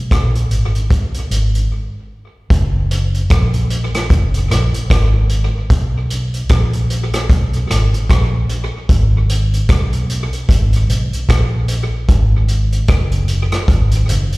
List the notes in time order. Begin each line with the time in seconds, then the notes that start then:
0.11 A#1, kick, cross-stick, closed hi-hat
0.35 closed hi-hat
0.51 G#1, closed hi-hat
0.75 closed hi-hat
0.91 kick, closed hi-hat
1.14 closed hi-hat
1.31 G#1, closed hi-hat
1.55 closed hi-hat
2.50 F#1, kick, closed hi-hat
2.91 closed hi-hat
3.14 closed hi-hat
3.30 A#1, kick, cross-stick, closed hi-hat
3.54 closed hi-hat
3.70 closed hi-hat
3.94 cross-stick, closed hi-hat
4.10 F#1, kick, closed hi-hat
4.34 closed hi-hat
4.50 A#1, cross-stick, closed hi-hat
4.74 closed hi-hat
4.90 G#1, kick, cross-stick, closed hi-hat
5.29 closed hi-hat
5.70 B1, kick, closed hi-hat
6.10 closed hi-hat
6.34 closed hi-hat
6.49 A#1, kick, cross-stick, closed hi-hat
6.73 closed hi-hat
6.90 closed hi-hat
7.13 cross-stick, closed hi-hat
7.30 B1, kick, closed hi-hat
7.53 closed hi-hat
7.70 G#1, cross-stick, closed hi-hat
7.94 closed hi-hat
8.10 A#1, kick, cross-stick, closed hi-hat
8.49 closed hi-hat
8.89 G#1, kick, closed hi-hat
9.29 closed hi-hat
9.54 closed hi-hat
9.69 B1, kick, cross-stick, closed hi-hat
9.93 closed hi-hat
10.10 closed hi-hat
10.33 closed hi-hat
10.49 G#1, kick, closed hi-hat
10.73 closed hi-hat
10.89 B1, closed hi-hat
11.13 closed hi-hat
11.29 A#1, kick, cross-stick, closed hi-hat
11.68 closed hi-hat
12.08 G#1, kick, closed hi-hat
12.48 closed hi-hat
12.72 closed hi-hat
12.88 F#1, kick, cross-stick, closed hi-hat
13.12 closed hi-hat
13.28 closed hi-hat
13.52 cross-stick, closed hi-hat
13.68 G#1, kick, closed hi-hat
13.91 closed hi-hat
14.09 F#1, closed hi-hat
14.32 closed hi-hat